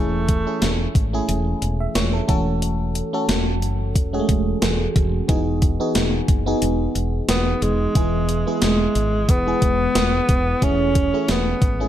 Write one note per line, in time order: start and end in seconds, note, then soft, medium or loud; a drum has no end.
0.00 0.43 E1 loud
0.00 0.91 E3 medium
0.00 0.36 A3 medium
0.00 0.96 A3 medium
0.00 0.36 C#4 medium
0.00 0.36 E4 medium
0.00 0.36 G#4 medium
0.29 kick medium
0.29 closed hi-hat medium
0.46 0.99 A3 medium
0.46 0.99 C#4 medium
0.46 0.99 E4 medium
0.46 1.00 G#4 medium
0.62 0.86 E1 medium
0.62 snare loud
0.62 closed hi-hat medium
0.95 1.19 G#1 medium
0.95 kick medium
0.95 closed hi-hat medium
1.13 2.20 A3 medium
1.13 2.20 C#4 medium
1.13 2.20 E4 medium
1.13 1.62 G#4 medium
1.28 1.53 E1 loud
1.28 closed hi-hat medium
1.62 1.86 E1 medium
1.62 closed hi-hat medium
1.80 1.95 E5 medium
1.95 2.19 E1 loud
1.95 2.13 C#5 medium
1.95 snare loud
1.95 closed hi-hat medium
2.13 2.28 A4 medium
2.28 3.01 E1 medium
2.28 3.25 E3 medium
2.28 2.95 A3 medium
2.28 2.96 C#4 medium
2.28 2.96 F#4 medium
2.28 2.96 A4 loud
2.28 kick loud
2.28 closed hi-hat medium
2.62 closed hi-hat medium
2.95 closed hi-hat medium
3.13 3.93 A3 medium
3.13 3.93 C#4 medium
3.13 3.93 F#4 medium
3.13 3.93 A4 medium
3.28 3.62 E1 medium
3.28 snare loud
3.28 closed hi-hat medium
3.62 3.95 F#1 medium
3.62 closed hi-hat medium
3.95 4.19 E1 loud
3.95 kick medium
3.95 closed hi-hat loud
4.13 4.19 G#3 medium
4.13 5.07 C#4 medium
4.13 5.07 F#4 medium
4.13 5.07 G#4 medium
4.20 5.10 A3 medium
4.29 4.53 E1 medium
4.29 kick medium
4.29 closed hi-hat medium
4.62 4.86 E1 medium
4.62 snare loud
4.62 closed hi-hat medium
4.96 5.20 E1 loud
4.96 kick medium
4.96 closed hi-hat medium
5.28 5.77 E1 loud
5.28 6.25 E3 medium
5.28 5.69 B3 medium
5.28 5.70 D#4 medium
5.28 5.70 F#4 medium
5.28 5.70 G#4 medium
5.28 kick loud
5.28 closed hi-hat medium
5.62 kick medium
5.62 closed hi-hat medium
5.80 6.32 B3 medium
5.80 6.33 D#4 medium
5.80 6.33 F#4 medium
5.80 6.33 G#4 medium
5.95 6.19 E1 medium
5.95 snare loud
5.95 closed hi-hat medium
6.28 6.52 F#1 medium
6.28 kick medium
6.28 closed hi-hat medium
6.46 7.53 B3 medium
6.46 7.53 D#4 medium
6.46 7.54 F#4 medium
6.46 7.54 G#4 medium
6.62 6.86 E1 loud
6.62 closed hi-hat medium
6.95 7.19 E1 medium
6.95 closed hi-hat medium
7.28 7.52 E1 medium
7.28 7.64 B3 medium
7.28 snare loud
7.28 closed hi-hat loud
7.62 7.86 E1 loud
7.62 8.62 G#3 medium
7.62 closed hi-hat medium
7.95 8.43 E1 medium
7.95 8.92 E3 medium
7.95 8.36 G#3 medium
7.95 8.36 B3 medium
7.95 8.37 E4 medium
7.95 8.37 G#4 medium
7.95 kick loud
7.95 closed hi-hat medium
8.29 closed hi-hat medium
8.47 9.26 G#3 medium
8.47 9.26 B3 medium
8.47 9.26 E4 medium
8.47 9.27 G#4 medium
8.62 8.86 E1 medium
8.62 9.32 G#3 medium
8.62 snare loud
8.62 closed hi-hat medium
8.95 9.29 G#1 medium
8.95 closed hi-hat medium
9.29 9.53 E1 loud
9.29 10.65 B3 loud
9.29 kick medium
9.29 closed hi-hat medium
9.47 10.40 G#3 medium
9.47 10.40 B3 medium
9.47 10.41 E4 medium
9.47 10.41 G#4 medium
9.62 9.86 E1 medium
9.62 kick medium
9.62 closed hi-hat medium
9.95 10.19 E1 loud
9.95 snare loud
9.95 closed hi-hat medium
10.29 10.53 E1 loud
10.29 kick medium
10.29 closed hi-hat medium
10.61 11.10 E1 loud
10.61 11.58 E3 medium
10.61 11.03 A3 medium
10.61 11.03 C#4 medium
10.61 11.32 C#4 loud
10.61 11.03 E4 medium
10.61 11.03 G#4 medium
10.61 kick loud
10.61 closed hi-hat medium
10.95 kick medium
10.95 closed hi-hat medium
11.13 11.66 A3 medium
11.13 11.66 C#4 medium
11.13 11.66 E4 medium
11.13 11.67 G#4 medium
11.28 11.53 E1 medium
11.28 11.88 B3 medium
11.28 snare loud
11.28 closed hi-hat medium
11.62 11.86 G#1 medium
11.62 kick loud
11.62 closed hi-hat medium
11.80 11.88 A3 medium
11.80 11.88 C#4 medium
11.80 11.88 E4 medium
11.80 11.88 G#4 medium